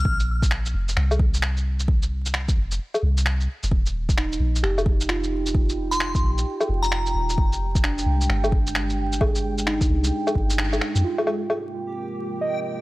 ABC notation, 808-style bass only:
X:1
M:4/4
L:1/16
Q:"Swing 16ths" 1/4=131
K:Cm
V:1 name="808-style bass" clef=bass
z6 F,,,2 C,,8- | C,,6 F,,,2 z2 C,,4 z F,,, | z6 B,,,2 F,,,8- | F,,,6 B,,,2 z2 F,,,4 E,,,2 |
F,,,6 C,,2 G,,,8- | G,,,6 C,,2 z2 G,,,4 z F,, | z16 |]